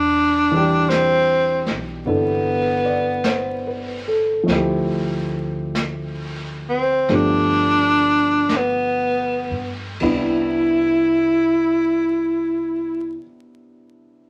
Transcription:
Already playing: E1 D4
0.51 E3 G3
0.56 D4 G4
0.89 C4, brush sweep, snare, hi-hat pedal
1.66 B1, snare
2.04 G1 C3 B3 D4 E4, brush sweep
2.09 A4
2.85 D5
3.24 C5, brush sweep, snare, hi-hat pedal
3.67 B4
4.08 A4
4.43 D2 F3 A3
4.48 C4, brush sweep, snare
4.52 E4 G4
5.75 brush sweep, snare, hi-hat pedal
6.69 C4
7.09 G1 F3 A3 B3 D4 G4, brush sweep, snare
7.15 D4
8.49 brush sweep, snare, hi-hat pedal
8.56 B3
9.51 G2
10.00 C2 C3 G3 B3 D4 E4, kick, crash
10.04 E4

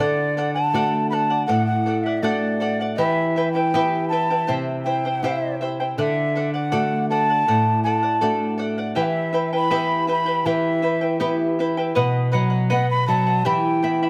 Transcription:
Already playing: D5
0.00 D3 A4 D5 F#5
0.37 A4 D5 F#5
0.54 D5 F#5 A5
0.73 A3 D4 F#4 A4 D5 F#5
1.10 A4 D5 F#5 A5 B5
1.30 D5 F#5
1.47 A2 A4 D5 F#5
1.66 F#5
1.86 A4 D5 F#5
2.03 D5 E5 F#5
2.18 E5
2.22 A3 D4 F#4 A4 D5 F#5
2.60 A4 D5 F#5
2.81 D5 F#5
2.96 E3 E4 G4 B4 E5 G5
3.36 E4 B4 E5 G5
3.53 E4 B4 G5
3.74 B3 E4 G4 B4 E5 G5
4.09 E4 B4 E5 G5 A5
4.30 E4 B4 G5
4.47 C3 E4 G4 C5 E5 G5
4.84 E4 C5 E5 G5
5.05 E4 C5 G5
5.23 C4 E4 G4 C5 E5 G5
5.61 E4 C5 E5 G5
5.80 E4 C5 G5
5.98 D3 A4 D5 E5 F#5
6.35 A4 D5 F#5
6.54 D5 F#5
6.72 A3 D4 F#4 A4 D5 F#5
7.10 A4 D5 F#5 A5
7.30 D5 F#5
7.48 A2 A4 D5 F#5
7.83 A4 D5 F#5 A5
8.03 D5 F#5
8.21 A3 D4 F#4 A4 D5 F#5
8.58 A4 D5 F#5
8.78 D5 F#5
8.95 E3 E4 G4 B4 E5 G5
9.01 E5 F#5
9.33 E4 B4 E5 G5
9.53 E4 B4 G5 B5
9.71 B3 E4 G4 B4 E5 G5
10.07 E4 B4 E5 G5
10.12 B5
10.26 E4 B4 G5
10.45 E3 E4 G4 B4 E5 G5
10.82 E4 B4 E5 G5
11.01 E4 B4 G5
11.20 B3 E4 G4 B4 E5 G5
11.59 E4 B4 E5 G5
11.77 E4 B4 G5
11.95 B2 B4 D#5 F#5
12.32 F#3 B4 D#5 F#5
12.50 D#5 F#5
12.70 B3 B4 D#5 F#5
12.90 B5
13.06 F#3 B4 D#5 F#5 A5
13.27 D#5 F#5
13.45 E3 E4 G4 E5 G5 B5
13.83 B3 E4 E5 G5 B5
14.02 E4 E5 B5

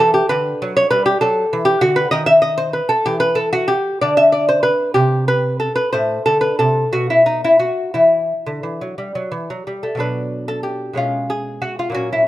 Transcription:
0.00 E3 A4
0.14 G4
0.29 D3 B4
0.62 F#3
0.77 C#5
0.90 G3 B4
1.06 G4
1.21 F#3 A4
1.53 E3
1.65 G4
1.81 D3 F#4
1.96 B4
2.11 D#3 D#5
2.26 E5
2.42 D#5
2.58 C5
2.73 B4
2.89 A4
3.06 E3 G4
3.20 B4
3.35 A4
3.53 F#4
3.68 G4
4.01 D3 D5
4.17 E5
4.32 D5
4.49 C5
4.63 B4
4.94 C3 G4
5.28 B4
5.60 A4
5.76 B4
5.93 A2 C5
6.26 D3 A4
6.41 B4
6.59 C3 A4
6.93 B2 F#4
7.10 E4
7.26 D#4
7.44 E4
7.59 F#4
7.94 E3 E4
8.46 D3
8.63 E3
8.81 F#3
8.98 G3
9.15 F#3
9.32 E3
9.50 F#3
9.67 G3
9.83 A3
9.95 B2 F#3 D4
10.00 B4
10.48 A4
10.63 G4
10.93 B2 G#3 C#4
10.97 F4
11.30 G#4
11.62 F#4
11.79 F4
11.90 A#2 F#3
11.94 C#4 F#4
12.13 E4

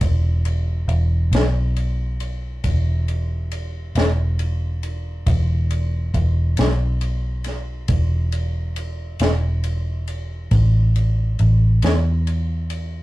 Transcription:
0.01 E1, kick, ride
0.45 ride
0.88 E1, ride
1.31 B1, snare, ride
1.76 ride
2.20 ride
2.64 E1, kick, ride
3.08 ride
3.51 ride
3.95 E1, snare, ride
4.39 ride
4.83 ride
5.27 E1, kick, ride
5.70 ride
6.14 E1, kick, ride
6.57 B1, snare, ride
7.01 ride
7.44 snare, ride
7.88 E1, kick, ride
8.32 ride
8.76 ride
9.19 E1, snare, ride
9.64 ride
10.07 ride
10.51 A1, kick, ride
10.96 ride
11.39 A1, ride
11.82 E2, snare, ride
12.27 ride
12.70 ride

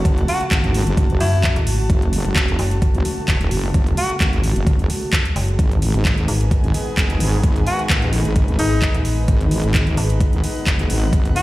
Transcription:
Already playing: C#3 G#3 A3 F#4 A5
0.05 F#1, kick, closed hi-hat
0.18 closed hi-hat
0.28 F#4, open hi-hat
0.41 closed hi-hat
0.51 G#1, kick, clap, closed hi-hat
0.64 closed hi-hat
0.74 open hi-hat
0.87 F#1, closed hi-hat
0.97 kick, closed hi-hat
1.10 F#1, closed hi-hat
1.20 F#2 E4, open hi-hat
1.44 kick, clap, closed hi-hat
1.56 G#1, closed hi-hat
1.67 open hi-hat
1.90 F#1, kick, closed hi-hat
2.02 closed hi-hat
2.13 open hi-hat
2.25 F#1, closed hi-hat
2.36 kick, clap, closed hi-hat
2.48 closed hi-hat
2.59 F#1, open hi-hat
2.71 closed hi-hat
2.82 kick, closed hi-hat
2.95 F#1, closed hi-hat
3.05 open hi-hat
3.28 E1, kick, clap, closed hi-hat
3.41 closed hi-hat
3.51 F#1, open hi-hat
3.74 F#1, kick, closed hi-hat
3.87 closed hi-hat
3.97 F#4, open hi-hat
4.10 closed hi-hat
4.20 G#1, kick, clap, closed hi-hat
4.33 closed hi-hat
4.44 open hi-hat
4.56 F#1, closed hi-hat
4.67 kick, closed hi-hat
4.79 closed hi-hat
4.90 open hi-hat
5.13 kick, clap, closed hi-hat
5.25 closed hi-hat
5.36 F#1, open hi-hat
5.48 closed hi-hat
5.59 G#1 D#3 B3 D#4 G#4, kick, closed hi-hat
5.72 closed hi-hat
5.82 open hi-hat
5.95 G#1, closed hi-hat
6.02 B4 G#5, kick, clap, closed hi-hat
6.18 closed hi-hat
6.28 G#1, open hi-hat
6.41 closed hi-hat
6.51 kick, closed hi-hat
6.64 G#1, closed hi-hat
6.74 open hi-hat
6.97 F#1, kick, clap, closed hi-hat
7.10 closed hi-hat
7.20 G#1, open hi-hat
7.43 G#1, kick, closed hi-hat
7.56 closed hi-hat
7.67 F#4, open hi-hat
7.79 closed hi-hat
7.90 A1, kick, clap, closed hi-hat
8.02 closed hi-hat
8.13 open hi-hat
8.25 G#1, closed hi-hat
8.36 kick, closed hi-hat
8.48 G#1, closed hi-hat
8.59 G#1 D#4, open hi-hat
8.82 kick, clap, closed hi-hat
8.94 A1, closed hi-hat
9.05 open hi-hat
9.28 G#1, kick, closed hi-hat
9.41 closed hi-hat
9.51 open hi-hat
9.64 G#1, closed hi-hat
9.74 kick, clap, closed hi-hat
9.87 closed hi-hat
9.97 G#1 F#5, open hi-hat
10.10 closed hi-hat
10.21 kick, closed hi-hat
10.33 G#1, closed hi-hat
10.44 open hi-hat
10.67 F#1, kick, clap, closed hi-hat
10.79 closed hi-hat
10.90 G#1, open hi-hat
11.13 G#1, kick, closed hi-hat
11.25 closed hi-hat
11.36 F#4, open hi-hat

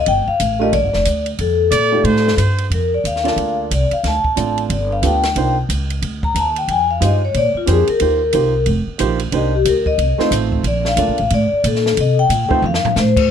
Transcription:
0.06 G1 G5, ride
0.27 F5, muted upright bass stroke
0.40 A1, hi-hat pedal, ride
0.59 A3 D4 F4 G4 A#4 D#5
0.73 A#1 D5, ride
0.83 G1
0.93 F1, snare
1.05 D2, hi-hat pedal, ride
1.26 ride
1.38 F2 A4, ride
1.71 A#2 D5, hi-hat pedal, ride
1.92 A3 D#4 F4 G4 D5
2.04 A2 C5, ride
2.16 snare
2.28 snare
2.37 G2 C5, hi-hat pedal, ride
2.58 ride
2.70 F2 A#4, ride
2.94 D5
3.04 D#2 F5, hi-hat pedal, ride
3.16 snare
3.24 A#3 D4 F4 A4 D5, snare, ride
3.36 D2, ride
3.71 C2 D5, hi-hat pedal, ride
3.91 F5, muted upright bass stroke, ride
4.04 D2, snare, ride
4.08 A5
4.24 muted upright bass stroke, kick
4.36 A1 C4 D4 F4 A4 D5, hi-hat pedal, ride
4.58 ride
4.70 G1 D5, ride
4.92 F5
5.02 D2 B3 D4 F4 G4 A4 G5, hi-hat pedal, ride
5.23 snare, ride
5.36 C2 A#3 D4 D#4 F4 C5, ride
5.69 C#2, hi-hat pedal, ride
5.90 ride
6.02 D2, ride
6.23 A#5, kick
6.35 D#2 A5, hi-hat pedal, ride
6.56 G5, ride
6.68 F2 G#5, ride
6.91 F5
7.00 G2 G#3 D#4 F4 G4 C5, hi-hat pedal, ride
7.05 D#5
7.25 C#5
7.34 A#2 D5, ride
7.55 F4, muted upright bass stroke
7.66 F2 A#3 D4 G4 G#4 C5, hi-hat pedal, ride
7.71 G#4
7.87 A#4, muted upright bass stroke, ride
8.00 D#2 A#3 D#4 F4 G4 C5, ride
8.33 C2 A#3 D#4 F4 G4 C5, hi-hat pedal, ride
8.66 F1, ride
8.87 muted upright bass stroke
8.98 A#1 A#3 D#4 F4 G4 C5, hi-hat pedal, ride
9.19 ride
9.32 C2 A#3 D4 D#4 G4 C5, ride
9.36 D#5
9.55 G4
9.65 D2 A#4, hi-hat pedal, ride
9.86 D#5, kick
9.98 C2, ride
10.18 A3 C4 D#4 F4 C5, muted upright bass stroke, snare
10.31 A1, hi-hat pedal, ride
10.52 kick
10.63 A#1, ride
10.67 D5
10.85 F5, snare
10.97 D2 A#3 D4 F4 A4 D5, hi-hat pedal, ride
11.08 A#1
11.18 A1, ride
11.30 A2 D5, ride
11.52 muted upright bass stroke
11.64 A#2 A4, hi-hat pedal, ride
11.75 snare
11.86 snare
11.97 C3 D#5, ride
12.19 G5
12.29 A#2, hi-hat pedal, ride
12.49 A3 C4 D#4 F4 C5, muted upright bass stroke, kick
12.62 F2 F5, mid tom
12.74 snare
12.84 muted upright bass stroke, floor tom
12.96 A2 C5, snare, hi-hat pedal
13.17 kick, crash

